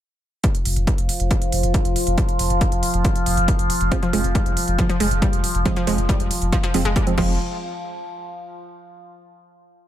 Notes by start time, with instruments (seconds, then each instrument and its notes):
0.44 synth drone F3 F4, kick, closed hi-hat
0.55 closed hi-hat
0.65 sub bass F1, open hi-hat
0.76 sub bass F1, closed hi-hat
0.87 kick, closed hi-hat
0.98 sub bass F1, closed hi-hat
1.09 open hi-hat
1.20 sub bass F1, closed hi-hat
1.31 kick, closed hi-hat
1.42 closed hi-hat
1.52 sub bass F1, open hi-hat
1.63 sub bass F1, closed hi-hat
1.74 kick, closed hi-hat
1.85 sub bass F1, closed hi-hat
1.96 open hi-hat
2.07 sub bass F1, closed hi-hat
2.18 kick, closed hi-hat
2.29 closed hi-hat
2.39 sub bass F1, open hi-hat
2.50 sub bass F1, closed hi-hat
2.61 kick, closed hi-hat
2.72 sub bass F1, closed hi-hat
2.83 open hi-hat
2.94 sub bass F1, closed hi-hat
3.05 kick, closed hi-hat
3.16 closed hi-hat
3.26 sub bass F1, open hi-hat
3.37 sub bass F1, closed hi-hat
3.48 kick, closed hi-hat
3.59 sub bass F1, closed hi-hat
3.70 open hi-hat
3.81 sub bass F1, closed hi-hat
3.92 synth arpeggio sound F3, synth stab F3 G#3 C4, kick, closed hi-hat
4.03 synth arpeggio sound F3, closed hi-hat
4.13 sub bass F1, synth stab F3 G#3 C4, synth arpeggio sound G#3, open hi-hat
4.24 sub bass F1, closed hi-hat
4.35 synth arpeggio sound G3, kick, closed hi-hat
4.46 sub bass F1, closed hi-hat
4.57 open hi-hat
4.68 sub bass F1, closed hi-hat
4.79 synth arpeggio sound F3, kick, closed hi-hat
4.89 synth arpeggio sound F3, closed hi-hat
5.00 sub bass F1, synth arpeggio sound G#3, open hi-hat
5.11 sub bass F1, closed hi-hat
5.22 synth arpeggio sound G3, kick, closed hi-hat
5.33 sub bass F1, closed hi-hat
5.44 open hi-hat
5.55 sub bass F1, closed hi-hat
5.65 synth stab F3 G#3 C4, synth arpeggio sound F3, kick, closed hi-hat
5.76 synth arpeggio sound F3, closed hi-hat
5.87 sub bass F1, synth stab F3 G#3 C4, synth arpeggio sound G#3, open hi-hat
5.98 sub bass F1, closed hi-hat
6.09 synth arpeggio sound G3, kick, closed hi-hat
6.20 sub bass F1, closed hi-hat
6.31 open hi-hat
6.42 sub bass F1, closed hi-hat
6.52 synth arpeggio sound F3, kick, closed hi-hat
6.63 synth arpeggio sound F3, closed hi-hat
6.74 sub bass F1, synth stab F3 G#3 C4, synth arpeggio sound F3, open hi-hat
6.85 sub bass F1, synth arpeggio sound G#3, closed hi-hat
6.96 synth arpeggio sound G3, kick, closed hi-hat
7.07 sub bass F1, synth stab F3 G#3 C4, closed hi-hat
7.18 sub bass F1, synth arpeggio sound F3, synth stab F3 G#3 C4, kick, crash